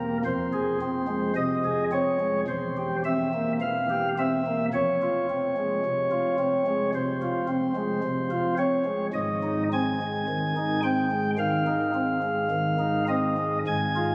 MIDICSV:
0, 0, Header, 1, 2, 480
1, 0, Start_track
1, 0, Key_signature, -4, "minor"
1, 0, Tempo, 1111111
1, 113, Time_signature, 4, 2, 24, 8
1, 3952, Key_signature, -4, "major"
1, 3953, Tempo, 1119403
1, 5393, Tempo, 1160542
1, 6071, End_track
2, 0, Start_track
2, 0, Title_t, "Pipe organ"
2, 0, Program_c, 0, 19
2, 0, Note_on_c, 0, 28, 54
2, 0, Note_on_c, 0, 40, 49
2, 0, Note_on_c, 0, 58, 46
2, 0, Note_on_c, 0, 70, 69
2, 75, Note_off_c, 0, 70, 0
2, 92, Note_off_c, 0, 58, 0
2, 94, Note_off_c, 0, 28, 0
2, 94, Note_off_c, 0, 40, 0
2, 107, Note_on_c, 0, 41, 56
2, 109, Note_on_c, 0, 72, 92
2, 111, Note_on_c, 0, 29, 57
2, 228, Note_on_c, 0, 68, 47
2, 337, Note_off_c, 0, 68, 0
2, 352, Note_on_c, 0, 60, 52
2, 459, Note_off_c, 0, 60, 0
2, 466, Note_on_c, 0, 56, 54
2, 576, Note_off_c, 0, 56, 0
2, 576, Note_off_c, 0, 72, 0
2, 587, Note_on_c, 0, 48, 53
2, 588, Note_on_c, 0, 75, 96
2, 697, Note_off_c, 0, 48, 0
2, 711, Note_on_c, 0, 68, 50
2, 795, Note_off_c, 0, 75, 0
2, 820, Note_off_c, 0, 68, 0
2, 829, Note_on_c, 0, 60, 61
2, 831, Note_on_c, 0, 73, 91
2, 939, Note_off_c, 0, 60, 0
2, 951, Note_on_c, 0, 56, 56
2, 1038, Note_off_c, 0, 73, 0
2, 1056, Note_off_c, 0, 41, 0
2, 1056, Note_off_c, 0, 56, 0
2, 1058, Note_off_c, 0, 29, 0
2, 1070, Note_on_c, 0, 28, 64
2, 1070, Note_on_c, 0, 40, 57
2, 1072, Note_on_c, 0, 72, 93
2, 1195, Note_on_c, 0, 67, 56
2, 1280, Note_off_c, 0, 72, 0
2, 1304, Note_off_c, 0, 67, 0
2, 1317, Note_on_c, 0, 60, 52
2, 1317, Note_on_c, 0, 76, 101
2, 1426, Note_off_c, 0, 60, 0
2, 1442, Note_on_c, 0, 58, 49
2, 1523, Note_off_c, 0, 76, 0
2, 1548, Note_off_c, 0, 58, 0
2, 1559, Note_on_c, 0, 52, 52
2, 1561, Note_on_c, 0, 77, 95
2, 1667, Note_off_c, 0, 52, 0
2, 1684, Note_on_c, 0, 67, 53
2, 1765, Note_off_c, 0, 77, 0
2, 1790, Note_off_c, 0, 67, 0
2, 1807, Note_on_c, 0, 60, 44
2, 1809, Note_on_c, 0, 76, 85
2, 1912, Note_off_c, 0, 60, 0
2, 1928, Note_on_c, 0, 58, 53
2, 2010, Note_off_c, 0, 76, 0
2, 2022, Note_off_c, 0, 28, 0
2, 2022, Note_off_c, 0, 40, 0
2, 2028, Note_off_c, 0, 58, 0
2, 2046, Note_on_c, 0, 73, 110
2, 2047, Note_on_c, 0, 29, 69
2, 2047, Note_on_c, 0, 41, 66
2, 2170, Note_on_c, 0, 65, 54
2, 2273, Note_off_c, 0, 65, 0
2, 2290, Note_on_c, 0, 60, 56
2, 2393, Note_off_c, 0, 60, 0
2, 2406, Note_on_c, 0, 56, 56
2, 2511, Note_off_c, 0, 56, 0
2, 2528, Note_on_c, 0, 48, 56
2, 2631, Note_off_c, 0, 48, 0
2, 2641, Note_on_c, 0, 65, 53
2, 2747, Note_off_c, 0, 65, 0
2, 2760, Note_on_c, 0, 60, 62
2, 2866, Note_off_c, 0, 60, 0
2, 2881, Note_on_c, 0, 56, 56
2, 2982, Note_off_c, 0, 73, 0
2, 2986, Note_off_c, 0, 56, 0
2, 3000, Note_on_c, 0, 48, 57
2, 3002, Note_on_c, 0, 72, 79
2, 3105, Note_off_c, 0, 48, 0
2, 3119, Note_on_c, 0, 65, 55
2, 3224, Note_off_c, 0, 65, 0
2, 3233, Note_on_c, 0, 60, 56
2, 3339, Note_off_c, 0, 60, 0
2, 3352, Note_on_c, 0, 56, 56
2, 3458, Note_off_c, 0, 56, 0
2, 3471, Note_on_c, 0, 48, 64
2, 3576, Note_off_c, 0, 48, 0
2, 3589, Note_on_c, 0, 65, 59
2, 3692, Note_off_c, 0, 72, 0
2, 3694, Note_off_c, 0, 65, 0
2, 3707, Note_on_c, 0, 60, 58
2, 3707, Note_on_c, 0, 73, 92
2, 3815, Note_off_c, 0, 60, 0
2, 3823, Note_on_c, 0, 56, 54
2, 3915, Note_off_c, 0, 73, 0
2, 3931, Note_off_c, 0, 56, 0
2, 3937, Note_off_c, 0, 29, 0
2, 3937, Note_off_c, 0, 41, 0
2, 3946, Note_on_c, 0, 32, 72
2, 3946, Note_on_c, 0, 44, 72
2, 3947, Note_on_c, 0, 75, 85
2, 4075, Note_on_c, 0, 63, 63
2, 4159, Note_off_c, 0, 75, 0
2, 4185, Note_off_c, 0, 63, 0
2, 4201, Note_on_c, 0, 60, 61
2, 4202, Note_on_c, 0, 80, 108
2, 4308, Note_off_c, 0, 60, 0
2, 4326, Note_on_c, 0, 56, 63
2, 4430, Note_off_c, 0, 56, 0
2, 4442, Note_on_c, 0, 51, 67
2, 4546, Note_off_c, 0, 51, 0
2, 4561, Note_on_c, 0, 63, 57
2, 4662, Note_off_c, 0, 80, 0
2, 4664, Note_off_c, 0, 63, 0
2, 4674, Note_on_c, 0, 79, 125
2, 4676, Note_on_c, 0, 60, 70
2, 4781, Note_off_c, 0, 60, 0
2, 4795, Note_on_c, 0, 56, 67
2, 4876, Note_off_c, 0, 79, 0
2, 4900, Note_off_c, 0, 56, 0
2, 4910, Note_on_c, 0, 51, 63
2, 4911, Note_on_c, 0, 77, 120
2, 5018, Note_off_c, 0, 51, 0
2, 5033, Note_on_c, 0, 63, 62
2, 5139, Note_off_c, 0, 63, 0
2, 5151, Note_on_c, 0, 60, 60
2, 5258, Note_off_c, 0, 60, 0
2, 5272, Note_on_c, 0, 56, 58
2, 5379, Note_off_c, 0, 56, 0
2, 5393, Note_on_c, 0, 51, 65
2, 5499, Note_off_c, 0, 51, 0
2, 5510, Note_on_c, 0, 63, 63
2, 5615, Note_off_c, 0, 77, 0
2, 5619, Note_off_c, 0, 63, 0
2, 5630, Note_on_c, 0, 60, 51
2, 5632, Note_on_c, 0, 75, 96
2, 5740, Note_off_c, 0, 60, 0
2, 5752, Note_on_c, 0, 56, 56
2, 5839, Note_off_c, 0, 75, 0
2, 5856, Note_off_c, 0, 32, 0
2, 5856, Note_off_c, 0, 56, 0
2, 5857, Note_off_c, 0, 44, 0
2, 5875, Note_on_c, 0, 32, 86
2, 5875, Note_on_c, 0, 80, 122
2, 5876, Note_on_c, 0, 44, 68
2, 5992, Note_on_c, 0, 65, 64
2, 6071, Note_off_c, 0, 32, 0
2, 6071, Note_off_c, 0, 44, 0
2, 6071, Note_off_c, 0, 65, 0
2, 6071, Note_off_c, 0, 80, 0
2, 6071, End_track
0, 0, End_of_file